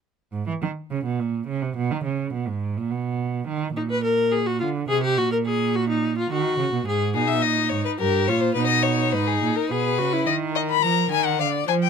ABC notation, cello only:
X:1
M:3/4
L:1/16
Q:1/4=106
K:G#m
V:1 name="Cello" clef=bass
z2 G,, E, D,2 C, B,, A,,2 C, ^B,, | B,, D, C,2 B,, G,,2 A,, B,,4 | D,2 A,,6 =D,2 ^B,,2 | A,,8 D,2 C, B,, |
G,,2 B,,2 A,,2 G,,2 =G,,2 _B,,2 | B,,4 G,,2 A,,2 B,,2 C,2 | D,4 ^E,2 D,2 =D,2 =F,2 |]